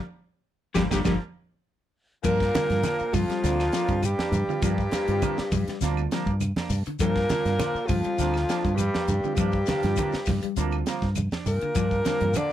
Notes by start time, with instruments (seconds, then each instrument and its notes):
0.74 fingered electric bass G1, clean electric guitar D3 F3 G3 A#3 D4, reed electric piano G3 A#3 D4, alto saxophone G4, kick, snare, high conga, claves, shekere
0.90 fingered electric bass G1, clean electric guitar D3 F3 G3 A#3 D4, reed electric piano G3 A#3 D4, alto saxophone G4, kick, snare, high conga, claves, shekere
1.04 fingered electric bass G1, clean electric guitar D3 F3 G3 A#3 D4, reed electric piano G3 A#3 D4, alto saxophone G4, kick, snare, high conga, claves, shekere
2.23 fingered electric bass G2, baritone saxophone A#2, clean electric guitar F3 A#3 D4, trombone A#3, alto saxophone A#4, kick, crash, claves, shekere
2.40 kick, snare, shekere
2.54 clean electric guitar D3 F3 A#3 D4, reed electric piano D3 G3 C4 F4, snare, closed hi-hat, high conga, low conga, shekere
2.70 fingered electric bass G2, snare, closed hi-hat, high conga, shekere
2.83 clean electric guitar D3 F3 A#3 D4, snare, closed hi-hat, high conga, claves, shekere
2.99 muted fingered electric bass stroke, shekere
3.13 baritone saxophone F2, fingered electric bass G2, reed electric piano D3 G3 C4 F4, clean electric guitar F3, trombone F3, alto saxophone F4, kick, open hi-hat, high conga, low conga, claves, shekere
3.29 clean electric guitar G3, muted fingered electric bass stroke, snare, closed hi-hat, shekere
3.43 fingered electric bass D2, reed electric piano D3 G3 C4 F4, clean electric guitar F3 A#3 D4, snare, closed hi-hat, shekere
3.59 snare, claves, shekere
3.72 clean electric guitar F3 A#3 D4, snare, closed hi-hat, shekere
3.88 fingered electric bass G2, reed electric piano D3 G3 C4 G4, kick, closed hi-hat, shekere
4.02 baritone saxophone G2, trombone G3, alto saxophone G4, closed hi-hat, claves, shekere
4.18 clean electric guitar A#3 D4, snare, high conga, shekere
4.32 fingered electric bass G2, reed electric piano C4 F4, closed hi-hat, high conga, low conga, shekere
4.48 clean electric guitar D3, reed electric piano D3 G3 C4 F4, muted fingered electric bass stroke, shekere
4.62 fingered electric bass G2, baritone saxophone G2, clean electric guitar F3 A#3 D4, trombone G3, alto saxophone G4, kick, closed hi-hat, claves, shekere
4.78 kick, shekere
4.91 clean electric guitar F3 A#3 D4, muted clean electric guitar stroke, snare, closed hi-hat, high conga, shekere
5.08 fingered electric bass G2, reed electric piano D3 G3 C4 F4, closed hi-hat, shekere
5.22 clean electric guitar D3 F3 A#3 D4, kick, closed hi-hat, high conga, claves, shekere
5.37 muted fingered electric bass stroke, snare, shekere
5.51 fingered electric bass G2, clean electric guitar F3, kick, open hi-hat, high conga, low conga, claves, shekere
5.68 clean electric guitar G3, muted fingered electric bass stroke, snare, closed hi-hat, shekere
5.81 fingered electric bass D2, reed electric piano D3 G3 C4 F4, clean electric guitar F3 A#3 D4, snare, closed hi-hat, shekere
5.97 claves, shekere
6.11 clean electric guitar F3 A#3 D4, snare, closed hi-hat, shekere
6.26 fingered electric bass G2, kick, shekere
6.41 closed hi-hat, low conga, claves, shekere
6.56 clean electric guitar A#3 D4, snare, high conga, shekere
6.70 fingered electric bass G2, open hi-hat, low conga, shekere
6.85 clean electric guitar D3, muted fingered electric bass stroke, closed hi-hat, shekere
6.99 fingered electric bass G2, baritone saxophone A#2, clean electric guitar F3 A#3 D4, trombone A#3, alto saxophone A#4, kick, closed hi-hat, claves, shekere
7.16 kick, snare, shekere
7.29 reed electric piano D3 G3 C4 F4, clean electric guitar D3 F3 A#3 D4, snare, closed hi-hat, high conga, low conga, shekere
7.45 fingered electric bass G2, snare, closed hi-hat, shekere
7.59 clean electric guitar D3 F3 A#3 D4, snare, closed hi-hat, high conga, claves, shekere
7.75 muted fingered electric bass stroke, shekere
7.86 baritone saxophone F2, fingered electric bass G2, trombone F3, clean electric guitar F3, alto saxophone F4, kick, open hi-hat, high conga, low conga, claves, shekere
7.91 reed electric piano D3 G3 C4 F4
8.03 clean electric guitar G3, muted fingered electric bass stroke, closed hi-hat, shekere
8.18 fingered electric bass D2, reed electric piano D3 G3 C4 D4, clean electric guitar F3 A#3 D4, snare, closed hi-hat, shekere
8.34 snare, claves, shekere
8.49 clean electric guitar F3 A#3 D4, snare, closed hi-hat, shekere
8.65 fingered electric bass G2, reed electric piano D3 G3 C4 F4, kick, closed hi-hat, shekere
8.74 baritone saxophone G2, trombone G3, alto saxophone G4, claves
8.78 closed hi-hat, high conga, shekere
8.94 clean electric guitar A#3 D4, snare, high conga, shekere
9.08 fingered electric bass G2, reed electric piano C4 F4, closed hi-hat, high conga, low conga, shekere
9.24 clean electric guitar D3, reed electric piano D3 G3 C4 F4, muted fingered electric bass stroke, shekere
9.35 baritone saxophone G2, fingered electric bass G2, clean electric guitar F3, trombone G3, alto saxophone G4, kick, closed hi-hat, claves, shekere
9.39 clean electric guitar A#3 D4
9.52 kick, shekere
9.66 clean electric guitar D3 F3 A#3 D4, snare, closed hi-hat, high conga, low conga, shekere
9.82 fingered electric bass G2, reed electric piano D3 G3 C4 F4, snare, closed hi-hat, high conga, shekere
9.96 clean electric guitar D3 F3 A#3 D4, kick, closed hi-hat, high conga, claves, shekere
10.12 muted fingered electric bass stroke, snare, shekere
10.26 fingered electric bass G2, clean electric guitar F3, kick, snare, open hi-hat, high conga, low conga, claves, shekere
10.41 clean electric guitar G3, muted fingered electric bass stroke, closed hi-hat, shekere
10.56 fingered electric bass D2, reed electric piano D3 G3 C4 F4, clean electric guitar F3 A#3 D4, closed hi-hat, shekere
10.72 claves, shekere
10.86 clean electric guitar F3 A#3, muted clean electric guitar stroke, snare, closed hi-hat, shekere
11.02 fingered electric bass G2, kick, snare, shekere
11.15 closed hi-hat, high conga, low conga, claves, shekere
11.32 clean electric guitar D4, snare, high conga, shekere
11.46 fingered electric bass G2, baritone saxophone A#2, trombone A#3, alto saxophone A#4, open hi-hat, low conga, shekere
11.61 clean electric guitar D3, muted fingered electric bass stroke, closed hi-hat, shekere
11.75 fingered electric bass G2, clean electric guitar F3 A#3 D4, kick, closed hi-hat, claves, shekere
11.91 kick, shekere
12.05 clean electric guitar D3 F3 A#3 D4, reed electric piano D3 G3 C4 F4, snare, closed hi-hat, high conga, shekere
12.20 fingered electric bass G2, closed hi-hat, high conga, shekere
12.34 clean electric guitar D3 F3 A#3 D4, baritone saxophone D3, alto saxophone D5, closed hi-hat, high conga, claves, shekere
12.38 trombone D4